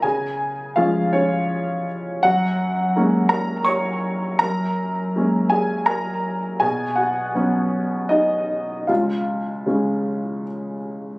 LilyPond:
<<
  \new Staff \with { instrumentName = "Upright piano" } { \time 3/4 \key fis \major \tempo 4 = 82 <gis' gis''>4 <eis' eis''>8 <cis' cis''>4 r8 | <fis' fis''>4. <ais' ais''>8 <cis'' cis'''>4 | <ais' ais''>4. <gis' gis''>8 <ais' ais''>4 | <gis' gis''>8 <fis' fis''>4. <dis' dis''>4 |
<eis' eis''>2 r4 | }
  \new Staff \with { instrumentName = "Upright piano" } { \clef bass \time 3/4 \key fis \major cis4 <eis gis cis'>2 | fis,4 <gis ais cis'>2 | fis,4 <gis ais cis'>2 | b,4 <fis b cis'>2 |
cis,4 <cis gis cis'>2 | }
>>